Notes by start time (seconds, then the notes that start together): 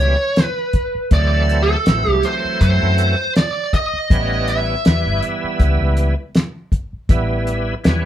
Already playing: C#2 B2 E3 G3 C#4 C#5
0.36 snare, closed hi-hat
0.45 B4
0.73 kick, closed hi-hat
0.95 muted fingered electric bass stroke
1.11 D2 E3 F#3 A3 C4 D5, kick, closed hi-hat
1.49 closed hi-hat
1.63 A4
1.86 A1 E3 F#3 A3 C4, snare, closed hi-hat
2.07 C2
2.12 G4
2.23 C5, closed hi-hat
2.45 muted fingered electric bass stroke
2.61 F#2 C5, kick, closed hi-hat
2.82 F#2
2.98 closed hi-hat
3.36 D5, snare, closed hi-hat
3.73 D#5, kick, closed hi-hat
3.93 muted fingered electric bass stroke
4.10 A1 E3 G3 B3 C#4, kick, closed hi-hat
4.48 E5, closed hi-hat
4.85 E2 E3 G3 B3 E4, snare, closed hi-hat
5.06 G1
5.23 closed hi-hat
5.44 muted fingered electric bass stroke
5.60 C#2, kick, closed hi-hat
5.81 C#2
5.97 closed hi-hat
6.35 snare, closed hi-hat
6.72 kick, closed hi-hat
6.93 muted fingered electric bass stroke
7.09 A1 E3 G3 B3 E4, kick, closed hi-hat
7.47 closed hi-hat
7.84 E2 E3 G3 B3 C#4, snare, closed hi-hat